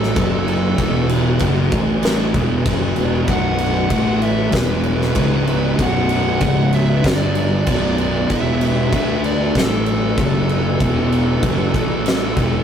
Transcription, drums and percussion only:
0.03 snare soft
0.16 kick loud
0.16 crash medium
0.48 crash medium
0.78 kick loud
0.78 crash medium
1.09 crash medium
1.39 kick loud
1.39 crash medium
1.72 kick loud
1.72 crash medium
2.03 snare medium
2.03 crash medium
2.34 kick loud
2.34 crash medium
2.66 kick loud
2.66 crash medium
2.96 crash medium
3.28 kick loud
3.28 crash medium
3.58 crash medium
3.90 kick loud
3.90 crash medium
4.22 crash medium
4.52 kick loud
4.52 snare medium
4.52 crash medium
4.84 crash medium
5.02 snare soft
5.15 kick loud
5.15 crash medium
5.47 crash medium
5.79 kick loud
5.79 crash medium
6.09 crash medium
6.40 kick loud
6.40 crash medium
6.73 crash medium
7.04 kick loud
7.04 snare loud
7.04 crash medium
7.35 crash medium
7.67 kick loud
7.67 crash medium
7.98 crash medium
8.30 kick loud
8.30 crash medium
8.61 crash medium
8.93 kick loud
8.93 crash medium
9.24 crash medium
9.55 kick medium
9.55 snare loud
9.55 crash medium
9.86 crash medium
10.18 kick loud
10.18 crash medium
10.49 crash soft
10.80 kick loud
10.80 crash medium
11.12 crash medium
11.43 kick loud
11.43 crash medium
11.74 kick loud
11.74 crash medium
12.06 snare medium
12.06 crash medium
12.37 kick loud
12.37 crash medium

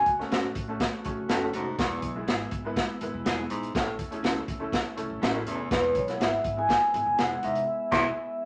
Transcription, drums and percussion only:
0.06 kick medium
0.06 closed hi-hat medium
0.20 snare soft
0.32 snare loud
0.32 closed hi-hat medium
0.55 kick loud
0.55 closed hi-hat medium
0.80 kick medium
0.80 snare loud
0.80 closed hi-hat medium
1.05 kick medium
1.05 closed hi-hat medium
1.29 snare loud
1.29 closed hi-hat medium
1.53 closed hi-hat medium
1.79 kick loud
1.79 snare loud
1.79 closed hi-hat medium
2.02 kick medium
2.02 closed hi-hat medium
2.28 snare loud
2.28 closed hi-hat medium
2.51 kick loud
2.51 closed hi-hat medium
2.76 kick medium
2.76 snare loud
2.76 closed hi-hat medium
3.01 closed hi-hat medium
3.26 snare loud
3.26 closed hi-hat medium
3.50 closed hi-hat medium
3.63 closed hi-hat soft
3.75 kick loud
3.75 snare loud
3.75 closed hi-hat medium
3.99 kick medium
3.99 closed hi-hat medium
4.12 closed hi-hat soft
4.24 snare loud
4.24 closed hi-hat medium
4.48 kick loud
4.48 closed hi-hat medium
4.72 kick medium
4.72 snare loud
4.72 closed hi-hat medium
4.98 closed hi-hat medium
5.23 snare loud
5.23 closed hi-hat medium
5.47 closed hi-hat medium
5.71 kick loud
5.71 snare loud
5.71 closed hi-hat medium
5.95 kick medium
5.95 closed hi-hat medium
6.08 snare soft
6.08 closed hi-hat medium
6.21 snare loud
6.21 closed hi-hat medium
6.44 kick loud
6.44 closed hi-hat medium
6.69 kick medium
6.69 snare loud
6.69 closed hi-hat medium
6.94 closed hi-hat medium
7.19 snare loud
7.19 closed hi-hat medium
7.43 closed hi-hat medium
7.55 closed hi-hat soft
7.92 kick medium
7.92 snare loud
7.92 crash medium

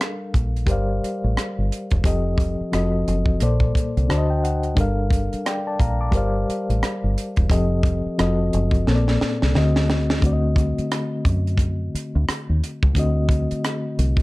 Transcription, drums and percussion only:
0.01 cross-stick loud
0.01 closed hi-hat medium
0.34 kick medium
0.34 closed hi-hat medium
0.57 closed hi-hat soft
0.67 kick medium
0.67 closed hi-hat medium
1.04 closed hi-hat medium
1.37 cross-stick medium
1.37 closed hi-hat medium
1.72 closed hi-hat medium
1.91 kick medium
1.91 closed hi-hat soft
2.04 kick loud
2.04 closed hi-hat medium
2.38 kick loud
2.38 closed hi-hat medium
2.73 cross-stick medium
2.73 closed hi-hat medium
3.08 closed hi-hat medium
3.26 kick medium
3.40 closed hi-hat medium
3.60 kick medium
3.75 kick medium
3.75 closed hi-hat medium
3.97 closed hi-hat soft
4.10 cross-stick medium
4.10 closed hi-hat medium
4.45 closed hi-hat medium
4.63 closed hi-hat soft
4.77 kick loud
4.77 closed hi-hat medium
5.10 kick loud
5.10 closed hi-hat medium
5.33 closed hi-hat soft
5.46 cross-stick loud
5.46 closed hi-hat medium
5.80 kick medium
5.80 closed hi-hat medium
6.12 kick medium
6.12 closed hi-hat medium
6.50 closed hi-hat medium
6.70 closed hi-hat soft
6.83 cross-stick loud
6.83 closed hi-hat medium
7.18 closed hi-hat medium
7.36 kick medium
7.36 closed hi-hat soft
7.50 kick loud
7.50 closed hi-hat medium
7.83 kick loud
7.83 closed hi-hat medium
8.19 cross-stick loud
8.19 closed hi-hat medium
8.53 closed hi-hat medium
8.71 kick medium
8.71 closed hi-hat soft
8.87 snare medium
9.08 snare soft
9.21 snare medium
9.42 snare medium
9.55 snare medium
9.76 snare medium
9.90 snare medium
10.10 snare medium
10.22 kick loud
10.22 closed hi-hat medium
10.56 kick loud
10.56 closed hi-hat medium
10.78 closed hi-hat soft
10.92 cross-stick loud
10.92 closed hi-hat medium
11.25 kick medium
11.25 closed hi-hat medium
11.47 closed hi-hat soft
11.58 kick medium
11.58 closed hi-hat medium
11.95 closed hi-hat medium
12.29 cross-stick loud
12.29 closed hi-hat medium
12.64 closed hi-hat medium
12.83 kick medium
12.95 kick loud
12.95 closed hi-hat loud
13.29 kick loud
13.29 closed hi-hat medium
13.51 closed hi-hat soft
13.64 cross-stick medium
13.64 closed hi-hat medium
13.99 closed hi-hat medium
14.17 kick medium

